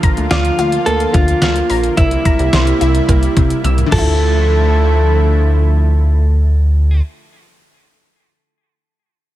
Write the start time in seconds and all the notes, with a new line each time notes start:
Already playing: D3 F3 A#3 F4
0.03 A#5, kick, closed hi-hat
0.17 D2, closed hi-hat
0.31 D2 F4 D5, snare, closed hi-hat
0.45 closed hi-hat
0.59 D2 F4, closed hi-hat
0.72 closed hi-hat
0.86 D2 A#3 A4, closed hi-hat
1.00 closed hi-hat
1.14 D2 D3 F4, kick, closed hi-hat
1.28 closed hi-hat
1.42 D2 F6, snare, closed hi-hat
1.56 closed hi-hat
1.70 A#1 A#5, open hi-hat
1.83 closed hi-hat
1.97 C2 C3 G3 E4 E6, kick, closed hi-hat
2.11 closed hi-hat
2.25 A#5, kick, closed hi-hat
2.39 C2, closed hi-hat
2.53 C2 C5, snare, closed hi-hat
2.67 closed hi-hat
2.81 C2 E4, closed hi-hat
2.95 closed hi-hat
3.09 C2 A#3, kick, closed hi-hat
3.23 closed hi-hat
3.37 C2 C3, kick, closed hi-hat
3.50 closed hi-hat
3.64 C2 E6, closed hi-hat, high tom
3.78 closed hi-hat, mid tom
3.86 D3
3.92 D2 D3 F3 A3 E4 A4, kick, crash
3.98 E4